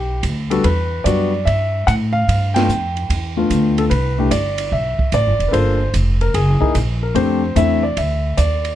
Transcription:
Already playing: upright bass B1, grand piano G4
0.23 upright bass D2, kick, hi-hat pedal, ride
0.50 grand piano G3 B3 D4 F#4 A4, ride
0.64 upright bass E2, grand piano B4, kick, ride
1.04 upright bass F#2, grand piano G3 B3 D4 F#4 D5, kick, hi-hat pedal, ride
1.45 upright bass G2, grand piano E5, kick, ride
1.87 upright bass A2, grand piano F#5, kick, hi-hat pedal, ride
2.13 grand piano F5
2.28 upright bass G2, kick, ride
2.54 grand piano A3 B3 D4 F4 G5, snare, ride
2.68 upright bass F2, hi-hat pedal
2.97 ride
3.10 upright bass E2, kick, ride
3.37 grand piano A3 B3 D4 F4
3.50 upright bass D2, kick, hi-hat pedal, ride
3.78 grand piano A4, ride
3.90 upright bass C2, grand piano B4, kick, ride
4.19 grand piano A3 D4 E4 G4
4.31 upright bass G1, grand piano D5, kick, hi-hat pedal, ride
4.58 ride
4.72 upright bass B1, grand piano E5, kick
4.98 muted upright bass stroke, kick
5.12 upright bass A1, grand piano D5, hi-hat pedal, ride
5.26 upright bass G1
5.39 upright bass E1, ride
5.48 grand piano A#3 D4 A4 B4
5.53 upright bass G1, grand piano F4 C5, kick, ride
5.94 upright bass F1, kick, hi-hat pedal, ride
6.21 grand piano A#4, ride
6.34 upright bass F#1, grand piano G#4, kick, ride
6.61 grand piano A#3 D#4 E4 G#4, muted upright bass stroke, kick
6.75 upright bass A#1, kick, hi-hat pedal, ride
7.03 grand piano A#4
7.15 upright bass F2, grand piano A3 C4 D4 G4 C5, kick, ride
7.56 upright bass E2, grand piano A3 C4 D4 E4 E5, kick, hi-hat pedal, ride
7.83 grand piano D5
7.97 upright bass D2, grand piano E5, kick, ride
8.37 upright bass D#2, grand piano D5, kick, hi-hat pedal, ride
8.65 ride

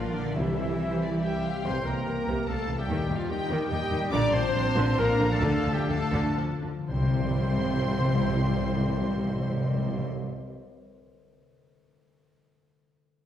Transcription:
Already playing: double bass section A#1, harp A#2 A#3 D4 A#4 D5 F5 A#5, french horn section D3, cello section F3, clarinet D4, viola section F4 A#4, violin section D5 F5, flute F5
0.03 harp F4
0.13 french horn section A#2, cello section D3, harp A#3, trumpet section D4, flute D5, violin section D5
0.24 harp F3
0.35 double bass section C2, harp C3, french horn section C3, timpani C3, cello section E3, trumpet section E4, viola section E4 G4, clarinet E4, violin section C5 E5, flute E5
0.46 harp C4
0.57 harp E3
0.68 harp G4
0.80 harp C5, violin section C5
1.00 violin section D5, harp G5
1.21 french horn section G3, violin section G4 E5 G5, oboe G4, clarinet G4, trumpet section G4, harp C5, flute E5
1.32 harp G4
1.43 harp C4, violin section F5
1.54 harp G3
1.64 double bass section C2, harp C3, cello section C3, timpani C3, viola section C3 E3, french horn section C4, clarinet C5, violin section C5 C6, oboe C5, trumpet section C5, flute G5
1.75 harp C4
1.84 double bass section C2, cello section C3, viola section G3, french horn section A#3, clarinet A#4, violin section A#4 A#5, oboe A#4, trumpet section A#4, flute G5
1.95 harp G4
2.07 double bass section C2, cello section C3, viola section E3
2.27 double bass section C2, cello section C3, viola section C3, harp G5
2.47 double bass section C2, cello section C3, viola section G3, french horn section A3, oboe A4, clarinet A4, violin section A4 A5, trumpet section A4, flute F5
2.58 harp G4
2.68 double bass section C2, cello section C3, viola section E3, harp E4
2.78 harp G3, french horn section G3, clarinet G4, violin section G4 G5, oboe G4, trumpet section G4, flute E5
2.88 double bass section D#2, harp D#3, cello section D#3, viola section D#3 D#4
2.98 harp A#3
3.09 double bass section D#2, cello section D#3, viola section G3, harp D#4
3.15 french horn section F3, clarinet F4, violin section F4 F5, trumpet section F4, oboe F4, flute D5
3.19 harp G4
3.28 double bass section D#2, viola section D#3, cello section D#3, french horn section G3, clarinet G4, oboe G4, violin section G4 G5, trumpet section G4, harp A#4, flute D#5
3.38 harp D#5
3.49 double bass section D#2, viola section D#3, cello section D#3
3.59 harp D#5
3.69 double bass section D#2, cello section D#3, viola section G3, french horn section G3, clarinet G4, oboe G4, violin section G4 G5, trumpet section G4, harp A#4, flute D#5
3.79 harp G4
3.89 double bass section D#2, viola section D#3, cello section D#3, harp D#4
4.00 harp G3
4.11 double bass section A#1, harp A#2, cello section A#2, viola section D3 D4, french horn section D4, violin section D5 D6, oboe D5, clarinet D5, trumpet section D5, flute A#5
4.22 harp A#3
4.32 double bass section A#1, cello section A#2, viola section F3, french horn section C4, harp D4, violin section C5 C6, clarinet C5, trumpet section C5, oboe C5, flute A5
4.43 harp F4
4.54 double bass section A#1, cello section A#2, viola section D3
4.75 double bass section A#1, cello section A#2, viola section D3, harp F5
4.87 harp D5
4.97 double bass section A#1, cello section A#2, viola section F3, french horn section A#3, harp A#4, violin section A#4 A#5, clarinet A#4, trumpet section A#4, oboe A#4, flute F5
5.08 harp F4
5.19 double bass section A#1, cello section A#2, viola section D3
5.31 harp F3, french horn section A3, clarinet A4, violin section A4 A5, oboe A4, trumpet section A4, flute F5
5.42 double bass section D2, cello section D3, harp D3, viola section D3
5.54 harp A3
5.64 double bass section D2, cello section D3, viola section F3
5.73 french horn section G3, harp F4, clarinet G4, violin section G4 G5, oboe G4, trumpet section G4, flute E5
5.88 double bass section D2, viola section D3, cello section D3, french horn section A3, violin section A4 A5, clarinet A4, trumpet section A4, oboe A4, flute F5
6.00 harp D5
6.12 double bass section D2, viola section D3, cello section D3, harp F5
6.25 harp D5
6.37 double bass section D2, cello section D3, viola section F3
6.50 harp F4
6.63 double bass section D2, viola section D3, cello section D3, harp D4
6.76 harp F3
6.88 double bass section C2, harp C3, timpani C3, cello section C3, viola section G3 E4, french horn section C4, clarinet C5, violin section C5 C6, oboe C5, trumpet section C5, flute G5
6.96 timpani C3, harp G3
7.03 timpani C3, harp C4
7.10 timpani C3, harp E4
7.17 timpani C3, harp C5
7.24 timpani C3
7.30 timpani C3
7.38 timpani C3
7.45 timpani C3
7.52 timpani C3
7.59 timpani C3
7.66 timpani C3
7.73 timpani C3
7.80 timpani C3
7.87 timpani C3
7.94 timpani C3
8.01 timpani C3
8.08 timpani C3
8.15 timpani C3
8.22 timpani C3
8.29 timpani C3
8.36 timpani C3
8.44 timpani C3
8.51 timpani C3
8.59 timpani C3
8.66 timpani C3
8.73 timpani C3
8.80 timpani C3
8.87 timpani C3
8.94 timpani C3
9.01 timpani C3
9.08 timpani C3
9.16 timpani C3
9.23 timpani C3
9.29 timpani C3
9.36 timpani C3
9.43 timpani C3
9.50 timpani C3
9.57 timpani C3
9.64 timpani C3
9.71 timpani C3
9.77 timpani C3
9.85 timpani C3
9.92 timpani C3
9.99 timpani C3

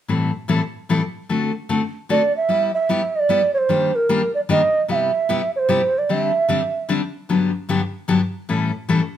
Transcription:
0.08 steel-string acoustic guitar A2 E3 G3 C4 E4 A4
0.48 steel-string acoustic guitar A2 E3 G3 C4 E4 A4
0.89 steel-string acoustic guitar A2 E3 G3 C4 E4 A4
1.29 steel-string acoustic guitar D3 A3 C4 F#4 A4
1.69 steel-string acoustic guitar D3 A3 C4 F#4 A4
2.09 steel-string acoustic guitar D3 A3 C4 F#4 A4, bansuri D5
2.37 bansuri E5
2.49 steel-string acoustic guitar G3 B3 E4 G4
2.74 bansuri E5
2.89 steel-string acoustic guitar G3 B3 E4 G4
3.16 bansuri D5 D#5
3.29 steel-string acoustic guitar G3 B3 E4 G4
3.54 bansuri C#5
3.58 bansuri C5
3.69 steel-string acoustic guitar D#3 G3 A#3 D4 G4
3.95 bansuri A#4
4.09 steel-string acoustic guitar D#3 G3 A#3 D4 G4
4.34 bansuri D5
4.49 steel-string acoustic guitar D#3 G3 A#3 D4 G4, bansuri D#5
4.88 steel-string acoustic guitar C3 G3 B3 E4 G4, bansuri F5
4.95 bansuri E5
5.29 steel-string acoustic guitar C3 G3 B3 E4 G4
5.56 bansuri C5 C#5
5.69 steel-string acoustic guitar C3 G3 B3 E4 G4
5.98 bansuri D5
6.09 steel-string acoustic guitar D3 G3 C4 D4 G4, bansuri E5
6.49 steel-string acoustic guitar D3 G3 C4 D4 G4
6.89 steel-string acoustic guitar D3 G3 C4 D4 G4
7.29 steel-string acoustic guitar G2 D3 F#3 B3 D4 G4
7.69 steel-string acoustic guitar G2 D3 F#3 B3 D4 G4
8.08 steel-string acoustic guitar G2 D3 F#3 B3 D4 G4
8.49 steel-string acoustic guitar A2 E3 G3 C#4 E4 A4
8.89 steel-string acoustic guitar A2 E3 G3 C#4 E4 A4

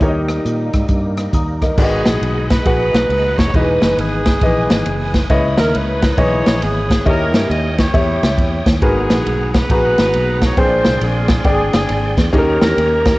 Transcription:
0.01 fingered electric bass D#2, grand piano D#3 D#4 G4 A#4 C#5, french horn section D#3 G3 A#3 D#4, tonewheel organ G3 A#3 D#4, kick, closed hi-hat
0.08 grand piano D#5
0.29 cross-stick, closed hi-hat
0.45 fingered electric bass A#2, closed hi-hat
0.73 fingered electric bass G#2, kick, cross-stick, closed hi-hat
0.88 fingered electric bass G2, kick, closed hi-hat
1.17 cross-stick, closed hi-hat
1.33 fingered electric bass D#2, grand piano A#5 D#6, kick, closed hi-hat
1.62 grand piano A#4 D#5, kick, cross-stick, closed hi-hat
1.77 fingered electric bass G#1, grand piano G#2 F#4 G#4 B4 D5, horn section B3 D#4 G#4, tonewheel organ G#4 D#5 F#5 B5, kick, crash
1.83 grand piano D#5
2.05 fingered electric bass A#1, snare, ride
2.22 fingered electric bass B1, ride
2.50 horn section B4, kick, snare, ride
2.65 fingered electric bass A#1, horn section D#4 F#4 B4, grand piano F#4 G#4 B4 F#5, kick, ride
2.94 fingered electric bass B1, snare, ride
3.09 fingered electric bass C#2, ride
3.38 fingered electric bass F1, horn section C#5, kick, snare, ride
3.54 fingered electric bass E1, grand piano E3 D#4 F#4 B4 D#5, horn section D#4 G#4 B4, tonewheel organ B4 G#5 D#6, kick, ride
3.61 grand piano G#4
3.82 fingered electric bass F#1, snare, ride
3.98 fingered electric bass G#1, horn section B3 D#4 G#4, ride
4.26 kick, snare, ride
4.41 fingered electric bass A#1, grand piano E3 G#4 B4 D#5, horn section B3 D#4 G#4, kick, ride
4.70 fingered electric bass G#1, horn section B3 D#4 G#4, snare, ride
4.86 fingered electric bass F#1, ride
5.14 kick, snare, ride
5.30 fingered electric bass C#2, grand piano C#3 E4 B4 C#5 D#5, tonewheel organ C#5 B5, kick, ride
5.57 fingered electric bass D#2, horn section A#4, snare, ride
5.74 fingered electric bass C#2, horn section D#4 E4 B4, ride
6.02 kick, snare, ride
6.17 fingered electric bass B1, grand piano E3 B4 C#5 D#5, horn section E4 G#4 C#5, kick, ride
6.46 fingered electric bass A#1, snare, ride
6.62 fingered electric bass G#1, horn section B3 E4 G#4, ride
6.90 kick, snare, ride
7.06 fingered electric bass D#2, grand piano D#3 E4 G4 C#5 D#5, horn section C#4 G4 A#4, tonewheel organ G5 D#6, kick, ride
7.34 fingered electric bass G2, snare, ride
7.50 fingered electric bass D#2, horn section D#5, ride
7.78 horn section E4 G4 C#5, kick, snare, ride
7.94 fingered electric bass E2, grand piano E4 G4 C#5 E5, kick, ride
8.23 fingered electric bass C#2, snare, ride
8.38 fingered electric bass E2, kick, ride
8.66 fingered electric bass D#2, kick, snare, ride
8.81 fingered electric bass G#1, grand piano G#2 F#4 G#4 A#4 B4, tonewheel organ B3 G#4 F#5 A#5, horn section B3 D#4 G#4, kick, ride
9.10 fingered electric bass A#1, snare, ride
9.26 fingered electric bass B1, ride
9.54 horn section B4, kick, snare, ride
9.69 fingered electric bass A#1, horn section D#4 F#4 B4, grand piano F#4 G#4 B4 A#5, kick, ride
9.98 fingered electric bass G#1, snare, ride
10.13 fingered electric bass B1, ride
10.41 horn section C#5, kick, snare, ride
10.57 fingered electric bass A#1, grand piano A#2 C4 G#4 C5 G5, horn section F4 G#4 C5, tonewheel organ G#4 D5 G5 C6, kick, ride
10.62 grand piano D4
10.85 fingered electric bass C2, snare, ride
11.01 fingered electric bass A#1, horn section C4 D4 G#4, ride
11.28 kick, snare, ride
11.44 fingered electric bass G#1, horn section C4 D4 G#4, grand piano D4 G#4 D5 G5, kick, ride
11.73 fingered electric bass G1, horn section C4 D4 G#4, snare, ride
11.89 fingered electric bass G#1, ride
12.17 fingered electric bass E2, kick, snare, ride
12.33 fingered electric bass D#2, grand piano D#3 C#4 D#4 G4 G#4, tonewheel organ G4 C#5 D#5 A#5, kick, ride
12.38 grand piano A#4
12.62 fingered electric bass E2, horn section C#4 G4 A#4, snare, ride
12.77 fingered electric bass D#2, ride
13.05 kick, snare, ride

